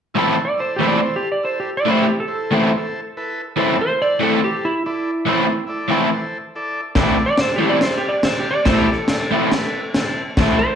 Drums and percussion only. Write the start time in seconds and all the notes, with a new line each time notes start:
6.95 kick, snare, crash
7.38 snare, crash
7.81 snare, crash
8.23 snare, crash
8.66 kick, snare, crash
9.08 snare, crash
9.52 snare, crash
9.94 snare, crash
10.37 kick, snare, crash